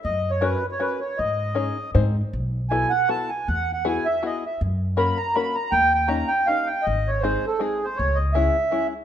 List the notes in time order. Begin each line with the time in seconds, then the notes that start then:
0.05 F#2 D#5
0.31 C#5
0.41 C#4 F#4 A#4 B4 C#5
0.71 C#5
0.80 C#4 F#4 A#4 B4 C#5
1.01 C#5
1.18 G#2 D#5
1.55 C#4 D#4 G#4 C#5
1.95 G#2 C4 D#4 G#4 C5
2.33 B1
2.70 B3 E4 F#4 A4 G#5
2.90 F#5
3.09 B3 E4 F#4 A4 A5
3.29 G#5
3.48 E2 F#5
3.73 F#5
3.85 B3 E4 F#4 G#4 G#5
4.06 E5
4.23 B3 E4 F#4 G#4 D#5
4.46 E5
4.61 F#2
4.97 A#3 C#4 F#4 A#4 B5
5.17 A#5
5.35 A#3 C#4 F#4 A#4 B5
5.55 A#5
5.72 D#2 G5
5.94 G5
6.08 A#3 C#4 D#4 G4 A#5
6.27 G5
6.47 A#3 C#4 D#4 G4 F5
6.66 G5
6.82 D#5
6.87 G#1
7.07 C#5
7.20 G#3 C4 D#4 C5
7.25 G#4
7.47 A4
7.58 G#3 C4 D#4 G#4
7.84 C5
7.96 C#2 C#5
8.15 D#5
8.33 G#3 C#4 E4 G#4 E5
8.71 G#3 C#4 E4 G#4